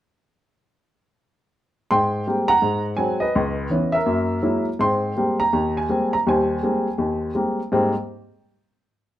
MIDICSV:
0, 0, Header, 1, 2, 480
1, 0, Start_track
1, 0, Key_signature, -4, "major"
1, 0, Tempo, 361446
1, 2540, Time_signature, 4, 2, 24, 8
1, 12215, End_track
2, 0, Start_track
2, 0, Title_t, "Grand piano"
2, 0, Program_c, 0, 0
2, 2531, Note_on_c, 0, 84, 90
2, 2541, Note_on_c, 0, 44, 68
2, 2548, Note_on_c, 0, 79, 65
2, 2953, Note_off_c, 0, 44, 0
2, 2981, Note_off_c, 0, 84, 0
2, 3015, Note_on_c, 0, 55, 46
2, 3018, Note_on_c, 0, 56, 44
2, 3022, Note_on_c, 0, 58, 42
2, 3028, Note_on_c, 0, 60, 52
2, 3296, Note_on_c, 0, 82, 99
2, 3313, Note_on_c, 0, 78, 71
2, 3337, Note_off_c, 0, 55, 0
2, 3339, Note_off_c, 0, 56, 0
2, 3341, Note_off_c, 0, 58, 0
2, 3344, Note_off_c, 0, 60, 0
2, 3450, Note_off_c, 0, 79, 0
2, 3480, Note_on_c, 0, 44, 64
2, 3754, Note_off_c, 0, 82, 0
2, 3902, Note_off_c, 0, 44, 0
2, 3938, Note_on_c, 0, 80, 73
2, 3951, Note_on_c, 0, 56, 42
2, 3955, Note_on_c, 0, 54, 46
2, 3965, Note_on_c, 0, 60, 56
2, 4224, Note_off_c, 0, 78, 0
2, 4239, Note_off_c, 0, 80, 0
2, 4251, Note_on_c, 0, 75, 75
2, 4276, Note_on_c, 0, 71, 54
2, 4285, Note_off_c, 0, 56, 0
2, 4288, Note_off_c, 0, 54, 0
2, 4292, Note_off_c, 0, 60, 0
2, 4455, Note_on_c, 0, 37, 70
2, 4871, Note_off_c, 0, 37, 0
2, 4913, Note_on_c, 0, 52, 50
2, 4926, Note_on_c, 0, 59, 43
2, 4931, Note_on_c, 0, 61, 50
2, 5187, Note_off_c, 0, 71, 0
2, 5210, Note_on_c, 0, 76, 85
2, 5242, Note_on_c, 0, 70, 65
2, 5247, Note_off_c, 0, 52, 0
2, 5254, Note_off_c, 0, 59, 0
2, 5256, Note_off_c, 0, 61, 0
2, 5257, Note_off_c, 0, 75, 0
2, 5393, Note_on_c, 0, 58, 64
2, 5395, Note_on_c, 0, 42, 66
2, 5820, Note_off_c, 0, 58, 0
2, 5821, Note_off_c, 0, 42, 0
2, 5870, Note_on_c, 0, 56, 45
2, 5874, Note_on_c, 0, 54, 51
2, 5881, Note_on_c, 0, 64, 58
2, 5882, Note_on_c, 0, 58, 49
2, 6135, Note_off_c, 0, 76, 0
2, 6151, Note_off_c, 0, 70, 0
2, 6207, Note_off_c, 0, 56, 0
2, 6209, Note_off_c, 0, 54, 0
2, 6212, Note_off_c, 0, 64, 0
2, 6213, Note_off_c, 0, 58, 0
2, 6366, Note_on_c, 0, 44, 67
2, 6376, Note_on_c, 0, 60, 67
2, 6383, Note_on_c, 0, 84, 80
2, 6402, Note_on_c, 0, 79, 56
2, 6788, Note_off_c, 0, 44, 0
2, 6793, Note_off_c, 0, 60, 0
2, 6863, Note_on_c, 0, 55, 48
2, 6868, Note_on_c, 0, 56, 43
2, 6872, Note_on_c, 0, 58, 45
2, 6874, Note_on_c, 0, 60, 54
2, 7114, Note_off_c, 0, 84, 0
2, 7167, Note_on_c, 0, 82, 83
2, 7185, Note_off_c, 0, 55, 0
2, 7187, Note_off_c, 0, 56, 0
2, 7189, Note_off_c, 0, 58, 0
2, 7190, Note_off_c, 0, 60, 0
2, 7302, Note_off_c, 0, 79, 0
2, 7344, Note_on_c, 0, 39, 67
2, 7663, Note_off_c, 0, 82, 0
2, 7666, Note_on_c, 0, 80, 72
2, 7759, Note_off_c, 0, 39, 0
2, 7826, Note_on_c, 0, 55, 48
2, 7829, Note_on_c, 0, 56, 45
2, 7829, Note_on_c, 0, 58, 47
2, 7836, Note_on_c, 0, 60, 57
2, 8105, Note_off_c, 0, 80, 0
2, 8143, Note_on_c, 0, 82, 77
2, 8147, Note_off_c, 0, 55, 0
2, 8148, Note_off_c, 0, 58, 0
2, 8149, Note_off_c, 0, 56, 0
2, 8152, Note_off_c, 0, 60, 0
2, 8209, Note_off_c, 0, 82, 0
2, 8324, Note_on_c, 0, 39, 72
2, 8329, Note_on_c, 0, 55, 63
2, 8344, Note_on_c, 0, 72, 55
2, 8346, Note_on_c, 0, 80, 68
2, 8730, Note_off_c, 0, 39, 0
2, 8733, Note_off_c, 0, 55, 0
2, 8805, Note_on_c, 0, 55, 51
2, 8812, Note_on_c, 0, 56, 49
2, 8813, Note_on_c, 0, 60, 54
2, 8822, Note_on_c, 0, 58, 45
2, 9117, Note_off_c, 0, 55, 0
2, 9121, Note_off_c, 0, 56, 0
2, 9121, Note_off_c, 0, 60, 0
2, 9126, Note_off_c, 0, 58, 0
2, 9273, Note_on_c, 0, 39, 62
2, 9685, Note_off_c, 0, 39, 0
2, 9714, Note_off_c, 0, 72, 0
2, 9715, Note_off_c, 0, 80, 0
2, 9758, Note_on_c, 0, 55, 46
2, 9758, Note_on_c, 0, 56, 47
2, 9768, Note_on_c, 0, 58, 45
2, 9771, Note_on_c, 0, 60, 51
2, 10074, Note_off_c, 0, 55, 0
2, 10074, Note_off_c, 0, 56, 0
2, 10079, Note_off_c, 0, 58, 0
2, 10080, Note_off_c, 0, 60, 0
2, 10251, Note_on_c, 0, 44, 66
2, 10252, Note_on_c, 0, 55, 59
2, 10260, Note_on_c, 0, 58, 58
2, 10260, Note_on_c, 0, 60, 75
2, 10512, Note_off_c, 0, 44, 0
2, 10513, Note_off_c, 0, 55, 0
2, 10516, Note_off_c, 0, 58, 0
2, 10517, Note_off_c, 0, 60, 0
2, 12215, End_track
0, 0, End_of_file